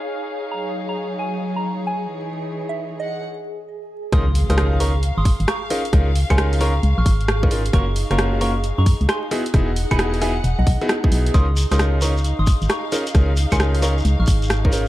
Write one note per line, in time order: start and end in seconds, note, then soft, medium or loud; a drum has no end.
0.00 3.22 D#4 medium
0.00 3.22 G#4 medium
0.00 4.11 G#4 medium
0.00 3.22 C#5 medium
0.00 2.09 F5 medium
0.00 0.45 F6 medium
0.52 2.10 F#3 medium
0.52 0.68 A#5 medium
0.89 1.00 A#5 medium
1.19 1.36 G#5 medium
1.56 1.67 A#5 medium
1.87 1.99 G#5 medium
2.10 3.22 E3 medium
2.69 2.80 E5 medium
3.00 3.16 D#5 medium
3.00 3.22 F#5 medium
4.12 4.44 C#2 loud
4.12 4.23 C#4 medium
4.12 4.23 D#4 medium
4.12 4.23 F4 medium
4.12 4.23 G#4 medium
4.12 11.33 G#4 medium
4.12 4.23 A#4 loud
4.12 4.29 C6 medium
4.12 4.29 D#6 loud
4.12 kick loud
4.12 cross-stick medium
4.12 closed hi-hat medium
4.12 impact medium
4.32 9.31 F5 medium
4.32 open hi-hat loud
4.50 5.11 C#2 medium
4.50 4.78 C#4 medium
4.50 4.78 D#4 medium
4.50 4.78 F4 medium
4.50 4.78 G#4 medium
4.50 4.78 A#4 medium
4.50 4.61 C6 medium
4.50 4.61 D#6 medium
4.50 cross-stick medium
4.50 closed hi-hat medium
4.58 cross-stick loud
4.58 closed hi-hat medium
4.80 4.90 C#4 medium
4.80 4.90 D#4 medium
4.80 4.90 F4 medium
4.80 4.90 G#4 medium
4.80 4.90 A#4 medium
4.80 4.96 A#5 medium
4.80 4.96 C#6 loud
4.80 open hi-hat loud
5.03 closed hi-hat medium
5.17 5.33 G#1 medium
5.17 5.28 C6 medium
5.17 5.28 D#6 medium
5.25 kick loud
5.25 open hi-hat loud
5.40 5.46 G#1 medium
5.40 closed hi-hat soft
5.48 5.60 A#5 medium
5.48 5.60 C#6 medium
5.48 cross-stick loud
5.48 closed hi-hat medium
5.70 5.80 C#4 medium
5.70 5.80 D#4 medium
5.70 5.80 F4 medium
5.70 5.80 G#4 medium
5.70 5.80 A#4 loud
5.70 open hi-hat loud
5.85 closed hi-hat medium
5.93 6.24 C#2 loud
5.93 6.08 C#4 medium
5.93 6.08 D#4 medium
5.93 6.08 F4 medium
5.93 6.08 G#4 medium
5.93 6.08 A#4 loud
5.93 kick loud
5.93 cross-stick medium
5.93 closed hi-hat medium
6.16 open hi-hat loud
6.30 6.80 C#2 medium
6.30 6.59 C#4 medium
6.30 6.59 D#4 medium
6.30 6.59 F4 medium
6.30 6.59 G#4 medium
6.30 6.59 A#4 loud
6.30 6.41 G#5 medium
6.30 6.41 C6 medium
6.30 kick medium
6.30 cross-stick medium
6.30 closed hi-hat medium
6.30 claves medium
6.38 cross-stick loud
6.38 closed hi-hat medium
6.53 open hi-hat medium
6.61 6.71 C#4 loud
6.61 6.71 D#4 medium
6.61 6.71 F4 medium
6.61 6.71 G#4 medium
6.61 6.71 A#4 loud
6.61 6.77 A#5 medium
6.61 6.77 C#6 medium
6.61 open hi-hat loud
6.83 6.94 C#2 medium
6.83 closed hi-hat medium
6.98 7.04 A#1 loud
6.98 7.67 C#6 medium
6.98 7.67 F6 medium
7.06 7.70 G#1 loud
7.06 kick loud
7.06 open hi-hat loud
7.21 closed hi-hat soft
7.28 cross-stick loud
7.28 closed hi-hat medium
7.43 7.49 C#4 medium
7.43 7.49 D#4 medium
7.43 7.49 F4 medium
7.43 7.49 G#4 medium
7.43 7.49 A#4 loud
7.43 kick loud
7.51 7.61 C#4 medium
7.51 7.61 D#4 medium
7.51 7.61 F4 medium
7.51 7.61 G#4 medium
7.51 7.61 A#4 medium
7.51 open hi-hat loud
7.66 closed hi-hat medium
7.73 8.05 F#1 loud
7.73 7.83 A#3 medium
7.73 7.83 C#4 medium
7.73 14.88 D#4 medium
7.73 7.83 F4 medium
7.73 7.83 F#4 medium
7.73 7.83 A#4 loud
7.73 7.90 A#5 medium
7.73 7.90 C#6 loud
7.73 kick loud
7.73 cross-stick medium
7.73 closed hi-hat medium
7.96 open hi-hat loud
8.11 8.72 F#1 medium
8.11 8.39 A#3 medium
8.11 8.39 C#4 medium
8.11 8.39 F4 medium
8.11 8.39 F#4 medium
8.11 8.39 A#4 medium
8.11 8.22 A#5 medium
8.11 8.22 C#6 medium
8.11 cross-stick medium
8.11 closed hi-hat medium
8.19 cross-stick loud
8.19 closed hi-hat medium
8.41 8.51 A#3 medium
8.41 8.51 C#4 medium
8.41 8.51 F4 medium
8.41 8.51 F#4 medium
8.41 8.51 A#4 medium
8.41 8.57 A#5 medium
8.41 8.57 C#6 loud
8.41 open hi-hat loud
8.64 closed hi-hat medium
8.78 8.93 F#2 medium
8.78 8.89 A#5 medium
8.78 8.89 C#6 medium
8.86 kick loud
8.86 open hi-hat loud
9.01 9.07 C#2 medium
9.01 closed hi-hat soft
9.09 9.21 G#5 medium
9.09 9.21 C6 medium
9.09 cross-stick loud
9.09 closed hi-hat medium
9.31 9.41 B3 medium
9.31 9.41 D#4 medium
9.31 9.41 E4 medium
9.31 9.41 F#4 medium
9.31 9.41 G#4 loud
9.31 open hi-hat loud
9.46 closed hi-hat medium
9.54 9.85 E1 loud
9.54 9.69 B3 medium
9.54 9.69 D#4 medium
9.54 9.69 E4 medium
9.54 9.69 F#4 medium
9.54 9.69 G#4 loud
9.54 11.34 F#5 medium
9.54 kick loud
9.54 cross-stick medium
9.54 closed hi-hat medium
9.76 open hi-hat loud
9.91 10.41 E1 medium
9.91 10.20 B3 medium
9.91 10.20 D#4 medium
9.91 10.20 E4 medium
9.91 10.20 F#4 medium
9.91 10.20 G#4 medium
9.91 10.02 G#5 medium
9.91 10.02 B5 medium
9.91 kick medium
9.91 cross-stick medium
9.91 closed hi-hat medium
9.91 claves medium
9.99 cross-stick loud
9.99 closed hi-hat medium
10.14 open hi-hat medium
10.21 10.32 B3 loud
10.21 10.32 D#4 medium
10.21 10.32 E4 medium
10.21 10.32 F#4 medium
10.21 10.32 G#4 loud
10.21 10.38 E5 medium
10.21 10.38 G#5 loud
10.21 cross-stick soft
10.21 open hi-hat loud
10.44 10.55 E1 medium
10.44 closed hi-hat medium
10.59 10.65 B1 loud
10.59 11.28 D#5 medium
10.59 11.28 F#5 medium
10.67 10.78 B1 medium
10.67 kick loud
10.67 open hi-hat loud
10.81 10.91 B3 loud
10.81 10.91 D#4 medium
10.81 10.91 E4 medium
10.81 10.91 F#4 medium
10.81 10.91 G#4 loud
10.81 closed hi-hat soft
10.89 cross-stick loud
10.89 closed hi-hat medium
11.04 11.32 B3 medium
11.04 11.32 D#4 medium
11.04 11.32 E4 medium
11.04 11.32 F#4 medium
11.04 11.32 G#4 medium
11.04 kick loud
11.12 11.30 B1 loud
11.12 open hi-hat loud
11.26 closed hi-hat medium
11.34 11.66 C#2 loud
11.34 11.44 C#4 medium
11.34 11.44 D#4 medium
11.34 11.44 F4 medium
11.34 14.88 G#4 medium
11.34 11.44 G#4 medium
11.34 11.44 A#4 loud
11.34 11.51 C6 medium
11.34 11.51 D#6 loud
11.34 kick loud
11.34 cross-stick medium
11.34 closed hi-hat medium
11.34 shekere soft
11.57 open hi-hat loud
11.57 shekere loud
11.71 12.33 C#2 medium
11.71 12.00 C#4 medium
11.71 12.00 D#4 medium
11.71 12.00 F4 medium
11.71 12.00 G#4 medium
11.71 12.00 A#4 medium
11.71 11.82 C6 medium
11.71 11.82 D#6 medium
11.71 cross-stick medium
11.71 closed hi-hat medium
11.71 shekere soft
11.79 cross-stick loud
11.79 closed hi-hat medium
11.79 shekere soft
11.93 14.88 F5 medium
12.01 12.12 C#4 medium
12.01 12.12 D#4 medium
12.01 12.12 F4 medium
12.01 12.12 G#4 medium
12.01 12.12 A#4 medium
12.01 12.18 A#5 medium
12.01 12.18 C#6 loud
12.01 open hi-hat loud
12.01 shekere medium
12.17 shekere medium
12.24 closed hi-hat medium
12.24 shekere soft
12.39 12.54 G#1 medium
12.39 12.50 C6 medium
12.39 12.50 D#6 medium
12.47 kick loud
12.47 open hi-hat loud
12.47 shekere loud
12.62 12.68 G#1 medium
12.62 closed hi-hat soft
12.62 shekere medium
12.69 12.81 A#5 medium
12.69 12.81 C#6 medium
12.69 cross-stick loud
12.69 closed hi-hat medium
12.69 shekere soft
12.92 13.02 C#4 medium
12.92 13.02 D#4 medium
12.92 13.02 F4 medium
12.92 13.02 G#4 medium
12.92 13.02 A#4 loud
12.92 open hi-hat loud
12.92 shekere loud
13.07 closed hi-hat medium
13.07 shekere medium
13.15 13.46 C#2 loud
13.15 13.30 C#4 medium
13.15 13.30 D#4 medium
13.15 13.30 F4 medium
13.15 13.30 G#4 medium
13.15 13.30 A#4 loud
13.15 kick loud
13.15 cross-stick medium
13.15 closed hi-hat medium
13.15 shekere soft
13.37 open hi-hat loud
13.37 shekere medium
13.52 14.02 C#2 medium
13.52 13.81 C#4 medium
13.52 13.81 D#4 medium
13.52 13.81 F4 medium
13.52 13.81 G#4 medium
13.52 13.81 A#4 medium
13.52 13.63 G#5 medium
13.52 13.63 C6 medium
13.52 kick medium
13.52 cross-stick medium
13.52 closed hi-hat medium
13.52 claves medium
13.52 shekere medium
13.60 cross-stick loud
13.60 closed hi-hat medium
13.60 shekere soft
13.75 open hi-hat medium
13.82 13.92 C#4 loud
13.82 13.92 D#4 medium
13.82 13.92 F4 medium
13.82 13.92 G#4 medium
13.82 13.92 A#4 loud
13.82 13.99 A#5 medium
13.82 13.99 C#6 medium
13.82 open hi-hat loud
13.82 shekere loud
13.98 shekere medium
14.05 14.16 C#2 loud
14.05 closed hi-hat medium
14.05 shekere soft
14.20 14.26 A#1 loud
14.20 14.88 C#6 medium
14.20 14.88 F6 medium
14.27 14.88 G#1 loud
14.27 kick loud
14.27 open hi-hat loud
14.27 shekere medium
14.42 closed hi-hat soft
14.42 shekere medium
14.50 cross-stick loud
14.50 closed hi-hat medium
14.50 shekere soft
14.65 14.71 C#4 medium
14.65 14.71 D#4 medium
14.65 14.71 F4 medium
14.65 14.71 G#4 medium
14.65 14.71 A#4 loud
14.65 kick loud
14.72 14.83 C#4 medium
14.72 14.83 D#4 medium
14.72 14.83 F4 medium
14.72 14.83 G#4 medium
14.72 14.83 A#4 medium
14.72 open hi-hat loud
14.72 shekere medium